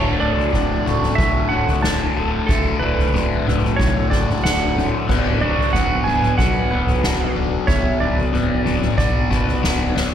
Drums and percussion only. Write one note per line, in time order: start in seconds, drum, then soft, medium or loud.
0.37 floor tom medium
0.53 kick medium
0.53 mid tom medium
0.86 floor tom medium
1.03 mid tom medium
1.18 kick loud
1.18 floor tom medium
1.67 floor tom medium
1.84 snare medium
2.49 kick loud
2.49 floor tom medium
2.98 floor tom medium
3.15 mid tom medium
3.48 floor tom medium
3.48 mid tom medium
3.64 mid tom medium
3.80 kick loud
3.80 floor tom medium
4.12 kick medium
4.29 floor tom medium
4.45 snare medium
4.78 mid tom medium
5.09 kick loud
5.09 floor tom medium
5.09 crash loud
5.59 floor tom medium
5.74 kick medium
5.74 mid tom medium
6.07 floor tom medium
6.23 mid tom medium
6.39 kick loud
6.39 floor tom medium
6.87 floor tom medium
7.04 snare medium
7.68 kick loud
7.68 floor tom medium
8.17 floor tom medium
8.33 mid tom medium
8.65 floor tom medium
8.65 mid tom medium
8.82 mid tom medium
8.98 kick loud
8.98 floor tom medium
9.31 kick medium
9.47 floor tom medium
9.64 snare medium
9.97 snare medium